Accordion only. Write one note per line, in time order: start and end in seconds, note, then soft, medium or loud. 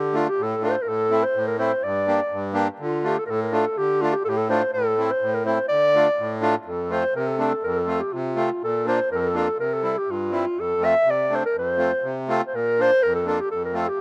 0.00 0.26 D3 medium
0.13 0.27 A3 medium
0.13 0.27 D4 medium
0.13 0.27 F4 medium
0.39 0.75 A2 medium
0.62 0.75 A3 medium
0.62 0.75 D4 medium
0.62 0.76 F4 medium
0.86 1.23 A2 medium
1.10 1.23 A3 medium
1.10 1.23 C4 medium
1.10 1.24 E4 medium
1.35 1.71 A2 medium
1.59 1.72 A3 medium
1.59 1.71 C4 medium
1.59 1.72 E4 medium
1.83 2.20 G2 medium
2.07 2.20 A#3 medium
2.07 2.20 D4 medium
2.07 2.20 G4 medium
2.31 2.68 G2 medium
2.53 2.67 A#3 medium
2.53 2.68 D4 medium
2.53 2.68 G4 medium
2.79 3.16 D3 medium
3.04 3.16 A3 medium
3.04 3.17 D4 medium
3.04 3.17 F4 medium
3.28 3.64 A2 medium
3.52 3.65 A3 medium
3.52 3.65 D4 medium
3.52 3.65 F4 medium
3.77 4.13 D3 medium
4.01 4.14 A3 medium
4.01 4.14 D4 medium
4.01 4.14 F4 medium
4.26 4.62 A2 medium
4.50 4.62 A3 medium
4.50 4.62 D4 medium
4.50 4.62 F4 medium
4.74 5.10 A2 medium
4.97 5.10 A3 medium
4.97 5.10 C4 medium
4.97 5.11 E4 medium
5.21 5.58 A2 medium
5.45 5.58 A3 medium
5.45 5.59 C4 medium
5.45 5.59 E4 medium
5.71 6.07 D3 medium
5.95 6.07 A3 medium
5.95 6.07 D4 medium
5.95 6.08 F4 medium
6.19 6.55 A2 medium
6.41 6.55 A3 medium
6.41 6.55 D4 medium
6.41 6.55 F4 medium
6.65 7.03 F2 medium
6.90 7.03 A3 medium
6.90 7.03 C4 soft
6.90 7.04 F4 medium
7.14 7.52 C3 medium
7.38 7.52 A3 soft
7.38 7.52 C4 medium
7.38 7.52 D4 medium
7.63 8.01 F2 medium
7.87 8.00 A3 medium
7.87 8.01 C4 soft
7.87 8.01 F4 medium
8.12 8.50 C3 medium
8.36 8.50 A3 medium
8.36 8.50 C4 medium
8.36 8.50 F4 medium
8.62 8.99 A#2 medium
8.86 8.99 A#3 medium
8.86 8.99 D4 soft
8.86 8.99 F4 medium
9.11 9.48 F2 medium
9.34 9.47 A#3 medium
9.34 9.48 D4 medium
9.34 9.48 F4 medium
9.58 9.96 C3 medium
9.82 9.96 G3 medium
9.82 9.96 C4 soft
9.82 9.96 E4 medium
10.07 10.45 G2 medium
10.31 10.45 G3 soft
10.31 10.45 C4 soft
10.31 10.45 E4 medium
10.56 10.94 F2 soft
10.81 10.94 A3 medium
10.81 10.94 C4 medium
10.81 10.94 F4 medium
11.05 11.42 C3 medium
11.30 11.43 A3 medium
11.30 11.43 C4 medium
11.30 11.43 D4 medium
11.54 11.91 F2 medium
11.77 11.91 A3 medium
11.77 11.91 C4 soft
11.77 11.92 F4 medium
12.03 12.40 C3 medium
12.28 12.41 A3 medium
12.28 12.41 C4 medium
12.28 12.41 F4 medium
12.54 12.90 A#2 medium
12.79 12.90 A#3 medium
12.79 12.91 D4 medium
12.79 12.91 F4 medium
13.04 13.39 F2 medium
13.26 13.38 A#3 medium
13.26 13.39 D4 medium
13.26 13.39 F4 medium
13.52 13.87 F2 medium
13.73 13.86 A3 medium
13.73 13.87 C4 soft
13.73 13.87 F4 medium